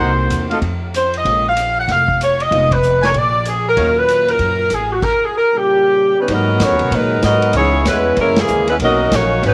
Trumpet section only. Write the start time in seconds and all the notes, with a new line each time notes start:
0.00 D#4 A#4 C5 F#5
0.50 F4 A4 D#5 F5
3.02 D4 A#4 B4 G#5
3.77 D#4 F#4 C#5 F5